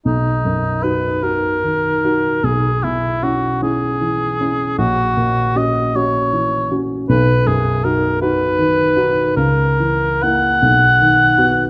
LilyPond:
<<
  \new Staff \with { instrumentName = "Cor anglais" } { \time 6/8 \key b \major \tempo 4. = 52 dis'4 b'8 ais'4. | gis'8 e'8 fis'8 gis'4. | fis'4 dis''8 cis''4 r8 | b'8 gis'8 ais'8 b'4. |
ais'4 fis''2 | }
  \new Staff \with { instrumentName = "Grand piano" } { \time 6/8 \key b \major b,,8 fis,8 <dis' fis'>8 <dis' fis'>8 dis8 <dis' fis'>8 | b,,8 b,8 <cis' e'>8 <cis' e'>8 e8 <cis' e'>8 | ais,,8 ais,8 <cis' fis'>8 <cis' fis'>8 e8 <cis' fis'>8 | b,,8 fis,8 <dis' fis'>8 <dis' fis'>8 dis8 <dis' fis'>8 |
cis,8 e8 <ais e'>8 b,,8 dis8 <b fis'>8 | }
>>